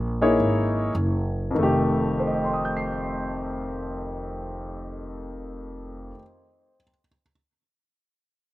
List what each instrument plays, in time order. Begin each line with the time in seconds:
Already playing: upright bass A#1
0.22 grand piano A#3 D#4 E4 G#4 C#5
0.40 upright bass G#1
0.95 upright bass F#1
1.51 grand piano F2
1.55 upright bass F1, grand piano D#3
1.59 grand piano A3
1.63 grand piano G4
2.19 grand piano C5
2.27 grand piano D#5
2.35 grand piano G5
2.44 grand piano C6
2.54 grand piano D#6
2.65 grand piano G6
2.77 grand piano C7